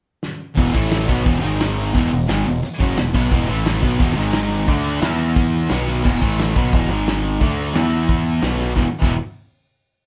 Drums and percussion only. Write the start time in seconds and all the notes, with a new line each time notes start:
0.23 snare
0.57 kick, open hi-hat
0.75 kick
0.91 snare, open hi-hat
1.09 kick
1.26 kick, open hi-hat
1.61 snare, open hi-hat
1.94 kick, open hi-hat
2.29 snare, open hi-hat
2.63 open hi-hat
2.80 kick
2.97 snare, open hi-hat
3.15 kick
3.31 kick, open hi-hat
3.66 snare, open hi-hat
3.83 kick
4.00 kick, open hi-hat
4.33 snare, open hi-hat
4.68 kick, open hi-hat
5.02 snare, open hi-hat
5.36 kick, open hi-hat
5.69 snare, open hi-hat
5.88 snare
6.05 kick, crash
6.22 kick
6.39 snare, open hi-hat
6.56 kick
6.73 kick, open hi-hat
7.08 snare, open hi-hat
7.41 kick, open hi-hat
7.75 snare, open hi-hat
8.09 kick, open hi-hat
8.42 snare, open hi-hat
8.60 snare
8.76 kick, snare
9.02 kick, crash